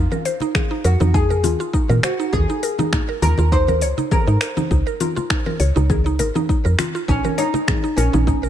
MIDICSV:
0, 0, Header, 1, 5, 480
1, 0, Start_track
1, 0, Tempo, 594059
1, 1885, Time_signature, 4, 2, 24, 8
1, 6862, End_track
2, 0, Start_track
2, 0, Title_t, "Oud"
2, 0, Program_c, 0, 24
2, 0, Note_on_c, 0, 65, 96
2, 651, Note_off_c, 0, 65, 0
2, 685, Note_on_c, 0, 66, 93
2, 919, Note_off_c, 0, 66, 0
2, 922, Note_on_c, 0, 68, 99
2, 1638, Note_off_c, 0, 68, 0
2, 1641, Note_on_c, 0, 66, 94
2, 1876, Note_off_c, 0, 66, 0
2, 1879, Note_on_c, 0, 68, 105
2, 2601, Note_off_c, 0, 68, 0
2, 2604, Note_on_c, 0, 70, 100
2, 2843, Note_off_c, 0, 70, 0
2, 2846, Note_on_c, 0, 72, 113
2, 3322, Note_off_c, 0, 72, 0
2, 3326, Note_on_c, 0, 70, 102
2, 3669, Note_off_c, 0, 70, 0
2, 5726, Note_on_c, 0, 61, 108
2, 5949, Note_off_c, 0, 61, 0
2, 5962, Note_on_c, 0, 63, 110
2, 6411, Note_off_c, 0, 63, 0
2, 6436, Note_on_c, 0, 61, 96
2, 6862, Note_off_c, 0, 61, 0
2, 6862, End_track
3, 0, Start_track
3, 0, Title_t, "Synth pluck"
3, 0, Program_c, 1, 84
3, 94, Note_on_c, 1, 70, 73
3, 199, Note_off_c, 1, 70, 0
3, 206, Note_on_c, 1, 72, 82
3, 329, Note_off_c, 1, 72, 0
3, 335, Note_on_c, 1, 63, 73
3, 434, Note_off_c, 1, 63, 0
3, 444, Note_on_c, 1, 68, 82
3, 568, Note_off_c, 1, 68, 0
3, 572, Note_on_c, 1, 63, 77
3, 678, Note_off_c, 1, 63, 0
3, 683, Note_on_c, 1, 70, 75
3, 807, Note_off_c, 1, 70, 0
3, 814, Note_on_c, 1, 63, 72
3, 914, Note_off_c, 1, 63, 0
3, 923, Note_on_c, 1, 63, 82
3, 1041, Note_off_c, 1, 63, 0
3, 1054, Note_on_c, 1, 70, 74
3, 1117, Note_off_c, 1, 70, 0
3, 1162, Note_on_c, 1, 65, 76
3, 1283, Note_off_c, 1, 65, 0
3, 1293, Note_on_c, 1, 65, 75
3, 1398, Note_off_c, 1, 65, 0
3, 1401, Note_on_c, 1, 63, 87
3, 1520, Note_off_c, 1, 63, 0
3, 1531, Note_on_c, 1, 70, 79
3, 1637, Note_off_c, 1, 70, 0
3, 1644, Note_on_c, 1, 72, 74
3, 1768, Note_off_c, 1, 72, 0
3, 1774, Note_on_c, 1, 63, 81
3, 1874, Note_off_c, 1, 63, 0
3, 1887, Note_on_c, 1, 68, 83
3, 2009, Note_off_c, 1, 68, 0
3, 2018, Note_on_c, 1, 63, 76
3, 2121, Note_off_c, 1, 63, 0
3, 2125, Note_on_c, 1, 70, 77
3, 2248, Note_off_c, 1, 70, 0
3, 2255, Note_on_c, 1, 63, 80
3, 2357, Note_off_c, 1, 63, 0
3, 2367, Note_on_c, 1, 63, 88
3, 2483, Note_off_c, 1, 63, 0
3, 2494, Note_on_c, 1, 70, 77
3, 2557, Note_off_c, 1, 70, 0
3, 2607, Note_on_c, 1, 65, 78
3, 2726, Note_off_c, 1, 65, 0
3, 2735, Note_on_c, 1, 65, 72
3, 2840, Note_off_c, 1, 65, 0
3, 2848, Note_on_c, 1, 63, 78
3, 2963, Note_off_c, 1, 63, 0
3, 2976, Note_on_c, 1, 70, 75
3, 3080, Note_off_c, 1, 70, 0
3, 3086, Note_on_c, 1, 73, 78
3, 3209, Note_off_c, 1, 73, 0
3, 3214, Note_on_c, 1, 63, 77
3, 3314, Note_off_c, 1, 63, 0
3, 3324, Note_on_c, 1, 68, 84
3, 3448, Note_off_c, 1, 68, 0
3, 3454, Note_on_c, 1, 63, 76
3, 3559, Note_off_c, 1, 63, 0
3, 3564, Note_on_c, 1, 70, 73
3, 3688, Note_off_c, 1, 70, 0
3, 3693, Note_on_c, 1, 63, 76
3, 3794, Note_off_c, 1, 63, 0
3, 3804, Note_on_c, 1, 63, 83
3, 3921, Note_off_c, 1, 63, 0
3, 3932, Note_on_c, 1, 70, 80
3, 3996, Note_off_c, 1, 70, 0
3, 4045, Note_on_c, 1, 65, 76
3, 4163, Note_off_c, 1, 65, 0
3, 4173, Note_on_c, 1, 65, 75
3, 4279, Note_off_c, 1, 65, 0
3, 4283, Note_on_c, 1, 63, 86
3, 4401, Note_off_c, 1, 63, 0
3, 4413, Note_on_c, 1, 70, 76
3, 4519, Note_off_c, 1, 70, 0
3, 4522, Note_on_c, 1, 73, 73
3, 4647, Note_off_c, 1, 73, 0
3, 4653, Note_on_c, 1, 63, 75
3, 4753, Note_off_c, 1, 63, 0
3, 4764, Note_on_c, 1, 68, 82
3, 4888, Note_off_c, 1, 68, 0
3, 4896, Note_on_c, 1, 63, 79
3, 5000, Note_off_c, 1, 63, 0
3, 5004, Note_on_c, 1, 70, 75
3, 5128, Note_off_c, 1, 70, 0
3, 5137, Note_on_c, 1, 63, 70
3, 5235, Note_off_c, 1, 63, 0
3, 5245, Note_on_c, 1, 63, 82
3, 5362, Note_off_c, 1, 63, 0
3, 5372, Note_on_c, 1, 70, 74
3, 5436, Note_off_c, 1, 70, 0
3, 5485, Note_on_c, 1, 65, 78
3, 5605, Note_off_c, 1, 65, 0
3, 5615, Note_on_c, 1, 65, 76
3, 5720, Note_off_c, 1, 65, 0
3, 5723, Note_on_c, 1, 63, 84
3, 5841, Note_off_c, 1, 63, 0
3, 5855, Note_on_c, 1, 70, 78
3, 5960, Note_off_c, 1, 70, 0
3, 5963, Note_on_c, 1, 73, 81
3, 6087, Note_off_c, 1, 73, 0
3, 6092, Note_on_c, 1, 63, 76
3, 6192, Note_off_c, 1, 63, 0
3, 6203, Note_on_c, 1, 68, 85
3, 6327, Note_off_c, 1, 68, 0
3, 6332, Note_on_c, 1, 63, 77
3, 6438, Note_off_c, 1, 63, 0
3, 6443, Note_on_c, 1, 70, 77
3, 6568, Note_off_c, 1, 70, 0
3, 6572, Note_on_c, 1, 63, 69
3, 6673, Note_off_c, 1, 63, 0
3, 6683, Note_on_c, 1, 63, 79
3, 6801, Note_off_c, 1, 63, 0
3, 6813, Note_on_c, 1, 70, 74
3, 6862, Note_off_c, 1, 70, 0
3, 6862, End_track
4, 0, Start_track
4, 0, Title_t, "FM bass"
4, 0, Program_c, 2, 39
4, 684, Note_on_c, 2, 41, 101
4, 779, Note_off_c, 2, 41, 0
4, 813, Note_on_c, 2, 41, 105
4, 1162, Note_on_c, 2, 39, 102
4, 1174, Note_off_c, 2, 41, 0
4, 1258, Note_off_c, 2, 39, 0
4, 1530, Note_on_c, 2, 46, 85
4, 1613, Note_off_c, 2, 46, 0
4, 1884, Note_on_c, 2, 39, 102
4, 1979, Note_off_c, 2, 39, 0
4, 2603, Note_on_c, 2, 39, 101
4, 2699, Note_off_c, 2, 39, 0
4, 2734, Note_on_c, 2, 39, 102
4, 3085, Note_on_c, 2, 37, 100
4, 3097, Note_off_c, 2, 39, 0
4, 3179, Note_off_c, 2, 37, 0
4, 3453, Note_on_c, 2, 44, 87
4, 3534, Note_off_c, 2, 44, 0
4, 3806, Note_on_c, 2, 37, 104
4, 3900, Note_off_c, 2, 37, 0
4, 4525, Note_on_c, 2, 37, 95
4, 4619, Note_off_c, 2, 37, 0
4, 4657, Note_on_c, 2, 37, 109
4, 5004, Note_on_c, 2, 32, 100
4, 5016, Note_off_c, 2, 37, 0
4, 5099, Note_off_c, 2, 32, 0
4, 5376, Note_on_c, 2, 41, 95
4, 5456, Note_off_c, 2, 41, 0
4, 5726, Note_on_c, 2, 34, 104
4, 5820, Note_off_c, 2, 34, 0
4, 6444, Note_on_c, 2, 34, 107
4, 6539, Note_off_c, 2, 34, 0
4, 6576, Note_on_c, 2, 34, 98
4, 6862, Note_off_c, 2, 34, 0
4, 6862, End_track
5, 0, Start_track
5, 0, Title_t, "Drums"
5, 94, Note_on_c, 9, 64, 79
5, 98, Note_on_c, 9, 69, 30
5, 174, Note_off_c, 9, 64, 0
5, 179, Note_off_c, 9, 69, 0
5, 205, Note_on_c, 9, 46, 89
5, 209, Note_on_c, 9, 69, 74
5, 286, Note_off_c, 9, 46, 0
5, 290, Note_off_c, 9, 69, 0
5, 325, Note_on_c, 9, 62, 50
5, 338, Note_on_c, 9, 69, 34
5, 406, Note_off_c, 9, 62, 0
5, 419, Note_off_c, 9, 69, 0
5, 443, Note_on_c, 9, 26, 74
5, 443, Note_on_c, 9, 64, 80
5, 444, Note_on_c, 9, 36, 111
5, 448, Note_on_c, 9, 69, 42
5, 524, Note_off_c, 9, 26, 0
5, 524, Note_off_c, 9, 64, 0
5, 525, Note_off_c, 9, 36, 0
5, 528, Note_off_c, 9, 69, 0
5, 683, Note_on_c, 9, 46, 81
5, 687, Note_on_c, 9, 69, 77
5, 763, Note_off_c, 9, 46, 0
5, 768, Note_off_c, 9, 69, 0
5, 809, Note_on_c, 9, 62, 60
5, 813, Note_on_c, 9, 64, 69
5, 817, Note_on_c, 9, 69, 33
5, 890, Note_off_c, 9, 62, 0
5, 894, Note_off_c, 9, 64, 0
5, 898, Note_off_c, 9, 69, 0
5, 924, Note_on_c, 9, 36, 106
5, 927, Note_on_c, 9, 69, 49
5, 1004, Note_off_c, 9, 36, 0
5, 1008, Note_off_c, 9, 69, 0
5, 1054, Note_on_c, 9, 63, 36
5, 1058, Note_on_c, 9, 69, 31
5, 1135, Note_off_c, 9, 63, 0
5, 1138, Note_off_c, 9, 69, 0
5, 1159, Note_on_c, 9, 62, 51
5, 1163, Note_on_c, 9, 46, 91
5, 1163, Note_on_c, 9, 64, 81
5, 1167, Note_on_c, 9, 69, 84
5, 1239, Note_off_c, 9, 62, 0
5, 1243, Note_off_c, 9, 46, 0
5, 1243, Note_off_c, 9, 64, 0
5, 1248, Note_off_c, 9, 69, 0
5, 1297, Note_on_c, 9, 69, 33
5, 1377, Note_off_c, 9, 69, 0
5, 1403, Note_on_c, 9, 36, 99
5, 1408, Note_on_c, 9, 69, 42
5, 1484, Note_off_c, 9, 36, 0
5, 1489, Note_off_c, 9, 69, 0
5, 1534, Note_on_c, 9, 64, 79
5, 1538, Note_on_c, 9, 69, 31
5, 1615, Note_off_c, 9, 64, 0
5, 1619, Note_off_c, 9, 69, 0
5, 1638, Note_on_c, 9, 63, 37
5, 1643, Note_on_c, 9, 26, 77
5, 1643, Note_on_c, 9, 46, 82
5, 1647, Note_on_c, 9, 69, 78
5, 1719, Note_off_c, 9, 63, 0
5, 1724, Note_off_c, 9, 26, 0
5, 1724, Note_off_c, 9, 46, 0
5, 1728, Note_off_c, 9, 69, 0
5, 1779, Note_on_c, 9, 69, 35
5, 1860, Note_off_c, 9, 69, 0
5, 1883, Note_on_c, 9, 36, 99
5, 1884, Note_on_c, 9, 64, 82
5, 1889, Note_on_c, 9, 69, 43
5, 1964, Note_off_c, 9, 36, 0
5, 1965, Note_off_c, 9, 64, 0
5, 1969, Note_off_c, 9, 69, 0
5, 2017, Note_on_c, 9, 69, 30
5, 2098, Note_off_c, 9, 69, 0
5, 2125, Note_on_c, 9, 46, 95
5, 2129, Note_on_c, 9, 69, 75
5, 2206, Note_off_c, 9, 46, 0
5, 2210, Note_off_c, 9, 69, 0
5, 2251, Note_on_c, 9, 62, 56
5, 2254, Note_on_c, 9, 64, 84
5, 2259, Note_on_c, 9, 69, 33
5, 2331, Note_off_c, 9, 62, 0
5, 2335, Note_off_c, 9, 64, 0
5, 2339, Note_off_c, 9, 69, 0
5, 2363, Note_on_c, 9, 36, 102
5, 2365, Note_on_c, 9, 26, 74
5, 2369, Note_on_c, 9, 64, 94
5, 2369, Note_on_c, 9, 69, 41
5, 2444, Note_off_c, 9, 36, 0
5, 2445, Note_off_c, 9, 26, 0
5, 2450, Note_off_c, 9, 64, 0
5, 2450, Note_off_c, 9, 69, 0
5, 2605, Note_on_c, 9, 46, 82
5, 2605, Note_on_c, 9, 64, 79
5, 2609, Note_on_c, 9, 69, 77
5, 2686, Note_off_c, 9, 46, 0
5, 2686, Note_off_c, 9, 64, 0
5, 2690, Note_off_c, 9, 69, 0
5, 2728, Note_on_c, 9, 62, 60
5, 2737, Note_on_c, 9, 69, 29
5, 2808, Note_off_c, 9, 62, 0
5, 2818, Note_off_c, 9, 69, 0
5, 2844, Note_on_c, 9, 36, 97
5, 2849, Note_on_c, 9, 69, 46
5, 2925, Note_off_c, 9, 36, 0
5, 2929, Note_off_c, 9, 69, 0
5, 2970, Note_on_c, 9, 63, 38
5, 2974, Note_on_c, 9, 64, 77
5, 2978, Note_on_c, 9, 69, 32
5, 3051, Note_off_c, 9, 63, 0
5, 3054, Note_off_c, 9, 64, 0
5, 3059, Note_off_c, 9, 69, 0
5, 3082, Note_on_c, 9, 46, 92
5, 3086, Note_on_c, 9, 69, 83
5, 3163, Note_off_c, 9, 46, 0
5, 3167, Note_off_c, 9, 69, 0
5, 3211, Note_on_c, 9, 63, 54
5, 3217, Note_on_c, 9, 69, 32
5, 3292, Note_off_c, 9, 63, 0
5, 3298, Note_off_c, 9, 69, 0
5, 3323, Note_on_c, 9, 64, 82
5, 3325, Note_on_c, 9, 36, 98
5, 3327, Note_on_c, 9, 69, 41
5, 3404, Note_off_c, 9, 64, 0
5, 3405, Note_off_c, 9, 36, 0
5, 3408, Note_off_c, 9, 69, 0
5, 3458, Note_on_c, 9, 69, 30
5, 3538, Note_off_c, 9, 69, 0
5, 3562, Note_on_c, 9, 26, 75
5, 3562, Note_on_c, 9, 46, 88
5, 3566, Note_on_c, 9, 69, 75
5, 3643, Note_off_c, 9, 26, 0
5, 3643, Note_off_c, 9, 46, 0
5, 3647, Note_off_c, 9, 69, 0
5, 3691, Note_on_c, 9, 64, 92
5, 3695, Note_on_c, 9, 69, 36
5, 3697, Note_on_c, 9, 63, 56
5, 3772, Note_off_c, 9, 64, 0
5, 3776, Note_off_c, 9, 69, 0
5, 3778, Note_off_c, 9, 63, 0
5, 3805, Note_on_c, 9, 36, 105
5, 3806, Note_on_c, 9, 69, 41
5, 3885, Note_off_c, 9, 36, 0
5, 3887, Note_off_c, 9, 69, 0
5, 3938, Note_on_c, 9, 69, 29
5, 4019, Note_off_c, 9, 69, 0
5, 4043, Note_on_c, 9, 46, 87
5, 4043, Note_on_c, 9, 64, 82
5, 4047, Note_on_c, 9, 69, 72
5, 4124, Note_off_c, 9, 46, 0
5, 4124, Note_off_c, 9, 64, 0
5, 4128, Note_off_c, 9, 69, 0
5, 4178, Note_on_c, 9, 62, 58
5, 4178, Note_on_c, 9, 69, 33
5, 4259, Note_off_c, 9, 62, 0
5, 4259, Note_off_c, 9, 69, 0
5, 4284, Note_on_c, 9, 26, 77
5, 4285, Note_on_c, 9, 36, 103
5, 4288, Note_on_c, 9, 69, 43
5, 4365, Note_off_c, 9, 26, 0
5, 4366, Note_off_c, 9, 36, 0
5, 4369, Note_off_c, 9, 69, 0
5, 4413, Note_on_c, 9, 64, 85
5, 4494, Note_off_c, 9, 64, 0
5, 4523, Note_on_c, 9, 46, 89
5, 4527, Note_on_c, 9, 69, 73
5, 4603, Note_off_c, 9, 46, 0
5, 4608, Note_off_c, 9, 69, 0
5, 4658, Note_on_c, 9, 69, 31
5, 4662, Note_on_c, 9, 62, 59
5, 4739, Note_off_c, 9, 69, 0
5, 4742, Note_off_c, 9, 62, 0
5, 4765, Note_on_c, 9, 36, 105
5, 4765, Note_on_c, 9, 64, 88
5, 4769, Note_on_c, 9, 69, 45
5, 4846, Note_off_c, 9, 36, 0
5, 4846, Note_off_c, 9, 64, 0
5, 4850, Note_off_c, 9, 69, 0
5, 4894, Note_on_c, 9, 63, 41
5, 4897, Note_on_c, 9, 69, 31
5, 4975, Note_off_c, 9, 63, 0
5, 4978, Note_off_c, 9, 69, 0
5, 5003, Note_on_c, 9, 46, 103
5, 5007, Note_on_c, 9, 62, 61
5, 5007, Note_on_c, 9, 69, 77
5, 5084, Note_off_c, 9, 46, 0
5, 5088, Note_off_c, 9, 62, 0
5, 5088, Note_off_c, 9, 69, 0
5, 5134, Note_on_c, 9, 64, 84
5, 5138, Note_on_c, 9, 69, 32
5, 5215, Note_off_c, 9, 64, 0
5, 5219, Note_off_c, 9, 69, 0
5, 5245, Note_on_c, 9, 36, 100
5, 5250, Note_on_c, 9, 69, 42
5, 5326, Note_off_c, 9, 36, 0
5, 5331, Note_off_c, 9, 69, 0
5, 5380, Note_on_c, 9, 69, 29
5, 5461, Note_off_c, 9, 69, 0
5, 5483, Note_on_c, 9, 26, 78
5, 5483, Note_on_c, 9, 46, 89
5, 5483, Note_on_c, 9, 64, 89
5, 5484, Note_on_c, 9, 63, 40
5, 5487, Note_on_c, 9, 69, 77
5, 5564, Note_off_c, 9, 26, 0
5, 5564, Note_off_c, 9, 46, 0
5, 5564, Note_off_c, 9, 64, 0
5, 5565, Note_off_c, 9, 63, 0
5, 5568, Note_off_c, 9, 69, 0
5, 5619, Note_on_c, 9, 69, 33
5, 5700, Note_off_c, 9, 69, 0
5, 5725, Note_on_c, 9, 36, 107
5, 5729, Note_on_c, 9, 69, 43
5, 5806, Note_off_c, 9, 36, 0
5, 5810, Note_off_c, 9, 69, 0
5, 5853, Note_on_c, 9, 64, 80
5, 5855, Note_on_c, 9, 63, 34
5, 5857, Note_on_c, 9, 69, 32
5, 5934, Note_off_c, 9, 64, 0
5, 5935, Note_off_c, 9, 63, 0
5, 5938, Note_off_c, 9, 69, 0
5, 5965, Note_on_c, 9, 46, 91
5, 5969, Note_on_c, 9, 69, 72
5, 6046, Note_off_c, 9, 46, 0
5, 6050, Note_off_c, 9, 69, 0
5, 6091, Note_on_c, 9, 62, 59
5, 6099, Note_on_c, 9, 69, 33
5, 6171, Note_off_c, 9, 62, 0
5, 6180, Note_off_c, 9, 69, 0
5, 6205, Note_on_c, 9, 36, 104
5, 6206, Note_on_c, 9, 26, 78
5, 6206, Note_on_c, 9, 64, 83
5, 6207, Note_off_c, 9, 64, 0
5, 6207, Note_on_c, 9, 64, 84
5, 6210, Note_on_c, 9, 69, 43
5, 6285, Note_off_c, 9, 36, 0
5, 6287, Note_off_c, 9, 26, 0
5, 6288, Note_off_c, 9, 64, 0
5, 6291, Note_off_c, 9, 69, 0
5, 6339, Note_on_c, 9, 69, 29
5, 6420, Note_off_c, 9, 69, 0
5, 6446, Note_on_c, 9, 46, 98
5, 6450, Note_on_c, 9, 69, 75
5, 6527, Note_off_c, 9, 46, 0
5, 6531, Note_off_c, 9, 69, 0
5, 6574, Note_on_c, 9, 62, 70
5, 6576, Note_on_c, 9, 64, 78
5, 6581, Note_on_c, 9, 69, 32
5, 6655, Note_off_c, 9, 62, 0
5, 6657, Note_off_c, 9, 64, 0
5, 6661, Note_off_c, 9, 69, 0
5, 6685, Note_on_c, 9, 36, 102
5, 6689, Note_on_c, 9, 69, 44
5, 6690, Note_on_c, 9, 64, 75
5, 6765, Note_off_c, 9, 36, 0
5, 6770, Note_off_c, 9, 64, 0
5, 6770, Note_off_c, 9, 69, 0
5, 6814, Note_on_c, 9, 63, 39
5, 6820, Note_on_c, 9, 69, 30
5, 6862, Note_off_c, 9, 63, 0
5, 6862, Note_off_c, 9, 69, 0
5, 6862, End_track
0, 0, End_of_file